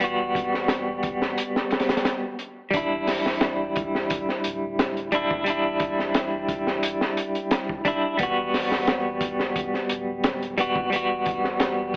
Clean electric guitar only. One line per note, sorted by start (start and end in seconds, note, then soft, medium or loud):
0.00 2.34 G3 medium
0.00 2.36 B3 medium
0.04 2.38 F#4 medium
2.71 5.07 G3 medium
2.71 5.09 D4 medium
2.77 5.10 E4 medium
5.12 5.43 G3 medium
5.12 5.43 D4 medium
5.12 5.44 E4 medium
5.44 7.80 G3 medium
5.44 7.82 D4 medium
5.50 7.83 E4 medium
7.85 8.15 G3 medium
7.85 8.16 D4 medium
7.85 8.17 E4 medium
8.17 10.53 G3 medium
8.17 10.55 B3 medium
8.23 10.56 F#4 medium
10.58 10.88 G3 medium
10.58 10.89 B3 medium
10.58 10.90 F#4 medium
10.90 11.96 G3 medium
10.90 11.96 B3 medium
10.96 11.96 F#4 loud